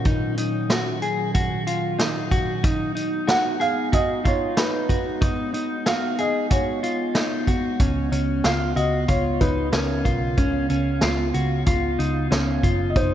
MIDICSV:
0, 0, Header, 1, 6, 480
1, 0, Start_track
1, 0, Tempo, 645161
1, 43, Time_signature, 4, 2, 24, 8
1, 9778, End_track
2, 0, Start_track
2, 0, Title_t, "Felt piano"
2, 0, Program_c, 0, 0
2, 2446, Note_on_c, 0, 78, 95
2, 2668, Note_off_c, 0, 78, 0
2, 2685, Note_on_c, 0, 77, 73
2, 2930, Note_on_c, 0, 75, 83
2, 2931, Note_off_c, 0, 77, 0
2, 3174, Note_off_c, 0, 75, 0
2, 3177, Note_on_c, 0, 73, 73
2, 3417, Note_off_c, 0, 73, 0
2, 3419, Note_on_c, 0, 71, 64
2, 3747, Note_off_c, 0, 71, 0
2, 4370, Note_on_c, 0, 77, 87
2, 4613, Note_off_c, 0, 77, 0
2, 4613, Note_on_c, 0, 75, 75
2, 4848, Note_on_c, 0, 73, 67
2, 4855, Note_off_c, 0, 75, 0
2, 5536, Note_off_c, 0, 73, 0
2, 6286, Note_on_c, 0, 77, 87
2, 6519, Note_on_c, 0, 75, 78
2, 6532, Note_off_c, 0, 77, 0
2, 6760, Note_on_c, 0, 73, 82
2, 6768, Note_off_c, 0, 75, 0
2, 6999, Note_on_c, 0, 71, 67
2, 7008, Note_off_c, 0, 73, 0
2, 7240, Note_on_c, 0, 70, 60
2, 7248, Note_off_c, 0, 71, 0
2, 7576, Note_off_c, 0, 70, 0
2, 9597, Note_on_c, 0, 75, 57
2, 9646, Note_off_c, 0, 75, 0
2, 9647, Note_on_c, 0, 72, 89
2, 9778, Note_off_c, 0, 72, 0
2, 9778, End_track
3, 0, Start_track
3, 0, Title_t, "Clean electric guitar"
3, 0, Program_c, 1, 27
3, 42, Note_on_c, 1, 63, 69
3, 274, Note_off_c, 1, 63, 0
3, 283, Note_on_c, 1, 63, 60
3, 523, Note_off_c, 1, 63, 0
3, 523, Note_on_c, 1, 66, 66
3, 757, Note_off_c, 1, 66, 0
3, 760, Note_on_c, 1, 68, 65
3, 998, Note_off_c, 1, 68, 0
3, 1001, Note_on_c, 1, 66, 74
3, 1239, Note_off_c, 1, 66, 0
3, 1242, Note_on_c, 1, 65, 68
3, 1477, Note_on_c, 1, 63, 70
3, 1482, Note_off_c, 1, 65, 0
3, 1720, Note_off_c, 1, 63, 0
3, 1720, Note_on_c, 1, 66, 68
3, 1960, Note_on_c, 1, 63, 74
3, 1962, Note_off_c, 1, 66, 0
3, 2188, Note_off_c, 1, 63, 0
3, 2197, Note_on_c, 1, 63, 65
3, 2436, Note_on_c, 1, 66, 75
3, 2440, Note_off_c, 1, 63, 0
3, 2674, Note_off_c, 1, 66, 0
3, 2677, Note_on_c, 1, 68, 65
3, 2915, Note_off_c, 1, 68, 0
3, 2918, Note_on_c, 1, 66, 73
3, 3155, Note_off_c, 1, 66, 0
3, 3158, Note_on_c, 1, 65, 66
3, 3398, Note_on_c, 1, 63, 72
3, 3401, Note_off_c, 1, 65, 0
3, 3638, Note_on_c, 1, 66, 68
3, 3641, Note_off_c, 1, 63, 0
3, 3877, Note_on_c, 1, 63, 71
3, 3881, Note_off_c, 1, 66, 0
3, 4111, Note_off_c, 1, 63, 0
3, 4120, Note_on_c, 1, 63, 68
3, 4359, Note_on_c, 1, 66, 68
3, 4361, Note_off_c, 1, 63, 0
3, 4601, Note_off_c, 1, 66, 0
3, 4604, Note_on_c, 1, 68, 64
3, 4836, Note_off_c, 1, 68, 0
3, 4839, Note_on_c, 1, 66, 73
3, 5079, Note_off_c, 1, 66, 0
3, 5082, Note_on_c, 1, 65, 66
3, 5320, Note_on_c, 1, 63, 74
3, 5322, Note_off_c, 1, 65, 0
3, 5562, Note_off_c, 1, 63, 0
3, 5564, Note_on_c, 1, 66, 61
3, 5802, Note_on_c, 1, 61, 69
3, 5803, Note_off_c, 1, 66, 0
3, 6033, Note_off_c, 1, 61, 0
3, 6042, Note_on_c, 1, 61, 67
3, 6282, Note_off_c, 1, 61, 0
3, 6282, Note_on_c, 1, 65, 69
3, 6517, Note_off_c, 1, 65, 0
3, 6520, Note_on_c, 1, 66, 68
3, 6754, Note_off_c, 1, 66, 0
3, 6757, Note_on_c, 1, 65, 77
3, 7000, Note_off_c, 1, 65, 0
3, 7000, Note_on_c, 1, 63, 66
3, 7235, Note_off_c, 1, 63, 0
3, 7238, Note_on_c, 1, 61, 70
3, 7476, Note_on_c, 1, 65, 61
3, 7480, Note_off_c, 1, 61, 0
3, 7719, Note_off_c, 1, 65, 0
3, 7719, Note_on_c, 1, 61, 78
3, 7950, Note_off_c, 1, 61, 0
3, 7959, Note_on_c, 1, 61, 69
3, 8199, Note_on_c, 1, 65, 71
3, 8201, Note_off_c, 1, 61, 0
3, 8435, Note_off_c, 1, 65, 0
3, 8438, Note_on_c, 1, 66, 68
3, 8676, Note_off_c, 1, 66, 0
3, 8679, Note_on_c, 1, 65, 80
3, 8919, Note_on_c, 1, 63, 71
3, 8921, Note_off_c, 1, 65, 0
3, 9154, Note_off_c, 1, 63, 0
3, 9157, Note_on_c, 1, 61, 73
3, 9399, Note_on_c, 1, 65, 66
3, 9400, Note_off_c, 1, 61, 0
3, 9641, Note_off_c, 1, 65, 0
3, 9641, Note_on_c, 1, 63, 71
3, 9778, Note_off_c, 1, 63, 0
3, 9778, End_track
4, 0, Start_track
4, 0, Title_t, "Ambient pad"
4, 0, Program_c, 2, 92
4, 0, Note_on_c, 2, 46, 63
4, 0, Note_on_c, 2, 51, 72
4, 0, Note_on_c, 2, 54, 71
4, 0, Note_on_c, 2, 61, 64
4, 1933, Note_off_c, 2, 51, 0
4, 1935, Note_off_c, 2, 46, 0
4, 1935, Note_off_c, 2, 54, 0
4, 1935, Note_off_c, 2, 61, 0
4, 1967, Note_on_c, 2, 56, 72
4, 1967, Note_on_c, 2, 59, 65
4, 1969, Note_on_c, 2, 63, 79
4, 5776, Note_off_c, 2, 63, 0
4, 5801, Note_on_c, 2, 49, 70
4, 5801, Note_on_c, 2, 77, 70
4, 9612, Note_off_c, 2, 49, 0
4, 9612, Note_off_c, 2, 77, 0
4, 9615, Note_off_c, 2, 56, 0
4, 9615, Note_off_c, 2, 59, 0
4, 9644, Note_on_c, 2, 68, 72
4, 9645, Note_on_c, 2, 51, 72
4, 9645, Note_on_c, 2, 63, 63
4, 9648, Note_on_c, 2, 60, 66
4, 9778, Note_off_c, 2, 51, 0
4, 9778, Note_off_c, 2, 60, 0
4, 9778, Note_off_c, 2, 63, 0
4, 9778, Note_off_c, 2, 68, 0
4, 9778, End_track
5, 0, Start_track
5, 0, Title_t, "Picked electric bass"
5, 0, Program_c, 3, 34
5, 5805, Note_on_c, 3, 37, 77
5, 6015, Note_off_c, 3, 37, 0
5, 6041, Note_on_c, 3, 37, 84
5, 6253, Note_off_c, 3, 37, 0
5, 6281, Note_on_c, 3, 37, 82
5, 6493, Note_off_c, 3, 37, 0
5, 6520, Note_on_c, 3, 37, 82
5, 6733, Note_off_c, 3, 37, 0
5, 6761, Note_on_c, 3, 37, 82
5, 6973, Note_off_c, 3, 37, 0
5, 7002, Note_on_c, 3, 37, 74
5, 7214, Note_off_c, 3, 37, 0
5, 7242, Note_on_c, 3, 37, 81
5, 7454, Note_off_c, 3, 37, 0
5, 7480, Note_on_c, 3, 35, 87
5, 7693, Note_off_c, 3, 35, 0
5, 7722, Note_on_c, 3, 37, 81
5, 7933, Note_off_c, 3, 37, 0
5, 7963, Note_on_c, 3, 37, 78
5, 8174, Note_off_c, 3, 37, 0
5, 8203, Note_on_c, 3, 37, 89
5, 8414, Note_off_c, 3, 37, 0
5, 8444, Note_on_c, 3, 37, 81
5, 8654, Note_off_c, 3, 37, 0
5, 8682, Note_on_c, 3, 37, 93
5, 8893, Note_off_c, 3, 37, 0
5, 8921, Note_on_c, 3, 37, 84
5, 9133, Note_off_c, 3, 37, 0
5, 9162, Note_on_c, 3, 37, 83
5, 9374, Note_off_c, 3, 37, 0
5, 9401, Note_on_c, 3, 30, 83
5, 9613, Note_off_c, 3, 30, 0
5, 9643, Note_on_c, 3, 29, 80
5, 9778, Note_off_c, 3, 29, 0
5, 9778, End_track
6, 0, Start_track
6, 0, Title_t, "Drums"
6, 37, Note_on_c, 9, 42, 55
6, 41, Note_on_c, 9, 36, 98
6, 111, Note_off_c, 9, 42, 0
6, 115, Note_off_c, 9, 36, 0
6, 279, Note_on_c, 9, 42, 49
6, 354, Note_off_c, 9, 42, 0
6, 519, Note_on_c, 9, 38, 98
6, 522, Note_on_c, 9, 42, 62
6, 593, Note_off_c, 9, 38, 0
6, 596, Note_off_c, 9, 42, 0
6, 759, Note_on_c, 9, 42, 38
6, 833, Note_off_c, 9, 42, 0
6, 1001, Note_on_c, 9, 42, 60
6, 1004, Note_on_c, 9, 36, 94
6, 1075, Note_off_c, 9, 42, 0
6, 1079, Note_off_c, 9, 36, 0
6, 1244, Note_on_c, 9, 42, 48
6, 1318, Note_off_c, 9, 42, 0
6, 1483, Note_on_c, 9, 38, 91
6, 1484, Note_on_c, 9, 42, 64
6, 1558, Note_off_c, 9, 38, 0
6, 1558, Note_off_c, 9, 42, 0
6, 1722, Note_on_c, 9, 36, 75
6, 1724, Note_on_c, 9, 42, 41
6, 1797, Note_off_c, 9, 36, 0
6, 1799, Note_off_c, 9, 42, 0
6, 1962, Note_on_c, 9, 42, 56
6, 1964, Note_on_c, 9, 36, 103
6, 2037, Note_off_c, 9, 42, 0
6, 2038, Note_off_c, 9, 36, 0
6, 2206, Note_on_c, 9, 42, 44
6, 2280, Note_off_c, 9, 42, 0
6, 2442, Note_on_c, 9, 38, 102
6, 2445, Note_on_c, 9, 42, 60
6, 2517, Note_off_c, 9, 38, 0
6, 2520, Note_off_c, 9, 42, 0
6, 2684, Note_on_c, 9, 42, 41
6, 2758, Note_off_c, 9, 42, 0
6, 2923, Note_on_c, 9, 42, 60
6, 2925, Note_on_c, 9, 36, 88
6, 2998, Note_off_c, 9, 42, 0
6, 2999, Note_off_c, 9, 36, 0
6, 3165, Note_on_c, 9, 36, 79
6, 3166, Note_on_c, 9, 42, 46
6, 3239, Note_off_c, 9, 36, 0
6, 3240, Note_off_c, 9, 42, 0
6, 3400, Note_on_c, 9, 38, 95
6, 3400, Note_on_c, 9, 42, 68
6, 3474, Note_off_c, 9, 38, 0
6, 3475, Note_off_c, 9, 42, 0
6, 3641, Note_on_c, 9, 36, 67
6, 3644, Note_on_c, 9, 42, 43
6, 3715, Note_off_c, 9, 36, 0
6, 3719, Note_off_c, 9, 42, 0
6, 3882, Note_on_c, 9, 36, 102
6, 3882, Note_on_c, 9, 42, 56
6, 3956, Note_off_c, 9, 36, 0
6, 3956, Note_off_c, 9, 42, 0
6, 4123, Note_on_c, 9, 42, 47
6, 4197, Note_off_c, 9, 42, 0
6, 4361, Note_on_c, 9, 38, 104
6, 4364, Note_on_c, 9, 42, 61
6, 4435, Note_off_c, 9, 38, 0
6, 4438, Note_off_c, 9, 42, 0
6, 4601, Note_on_c, 9, 42, 39
6, 4675, Note_off_c, 9, 42, 0
6, 4840, Note_on_c, 9, 42, 62
6, 4843, Note_on_c, 9, 36, 89
6, 4915, Note_off_c, 9, 42, 0
6, 4918, Note_off_c, 9, 36, 0
6, 5085, Note_on_c, 9, 42, 43
6, 5160, Note_off_c, 9, 42, 0
6, 5318, Note_on_c, 9, 38, 94
6, 5318, Note_on_c, 9, 42, 65
6, 5392, Note_off_c, 9, 38, 0
6, 5393, Note_off_c, 9, 42, 0
6, 5561, Note_on_c, 9, 36, 75
6, 5564, Note_on_c, 9, 42, 43
6, 5635, Note_off_c, 9, 36, 0
6, 5639, Note_off_c, 9, 42, 0
6, 5802, Note_on_c, 9, 36, 96
6, 5802, Note_on_c, 9, 42, 58
6, 5876, Note_off_c, 9, 42, 0
6, 5877, Note_off_c, 9, 36, 0
6, 6044, Note_on_c, 9, 42, 45
6, 6118, Note_off_c, 9, 42, 0
6, 6280, Note_on_c, 9, 38, 93
6, 6283, Note_on_c, 9, 42, 60
6, 6354, Note_off_c, 9, 38, 0
6, 6357, Note_off_c, 9, 42, 0
6, 6523, Note_on_c, 9, 42, 39
6, 6597, Note_off_c, 9, 42, 0
6, 6758, Note_on_c, 9, 42, 61
6, 6762, Note_on_c, 9, 36, 87
6, 6832, Note_off_c, 9, 42, 0
6, 6837, Note_off_c, 9, 36, 0
6, 6999, Note_on_c, 9, 42, 47
6, 7002, Note_on_c, 9, 36, 76
6, 7073, Note_off_c, 9, 42, 0
6, 7076, Note_off_c, 9, 36, 0
6, 7236, Note_on_c, 9, 38, 97
6, 7236, Note_on_c, 9, 42, 63
6, 7310, Note_off_c, 9, 38, 0
6, 7311, Note_off_c, 9, 42, 0
6, 7479, Note_on_c, 9, 36, 70
6, 7481, Note_on_c, 9, 42, 44
6, 7554, Note_off_c, 9, 36, 0
6, 7555, Note_off_c, 9, 42, 0
6, 7718, Note_on_c, 9, 42, 52
6, 7720, Note_on_c, 9, 36, 90
6, 7793, Note_off_c, 9, 42, 0
6, 7795, Note_off_c, 9, 36, 0
6, 7959, Note_on_c, 9, 42, 48
6, 8033, Note_off_c, 9, 42, 0
6, 8193, Note_on_c, 9, 38, 102
6, 8196, Note_on_c, 9, 42, 61
6, 8267, Note_off_c, 9, 38, 0
6, 8271, Note_off_c, 9, 42, 0
6, 8439, Note_on_c, 9, 42, 37
6, 8513, Note_off_c, 9, 42, 0
6, 8678, Note_on_c, 9, 42, 59
6, 8682, Note_on_c, 9, 36, 87
6, 8752, Note_off_c, 9, 42, 0
6, 8756, Note_off_c, 9, 36, 0
6, 8926, Note_on_c, 9, 42, 44
6, 9000, Note_off_c, 9, 42, 0
6, 9164, Note_on_c, 9, 38, 96
6, 9164, Note_on_c, 9, 42, 66
6, 9238, Note_off_c, 9, 38, 0
6, 9239, Note_off_c, 9, 42, 0
6, 9400, Note_on_c, 9, 36, 74
6, 9404, Note_on_c, 9, 42, 44
6, 9474, Note_off_c, 9, 36, 0
6, 9478, Note_off_c, 9, 42, 0
6, 9641, Note_on_c, 9, 42, 52
6, 9642, Note_on_c, 9, 36, 98
6, 9715, Note_off_c, 9, 42, 0
6, 9716, Note_off_c, 9, 36, 0
6, 9778, End_track
0, 0, End_of_file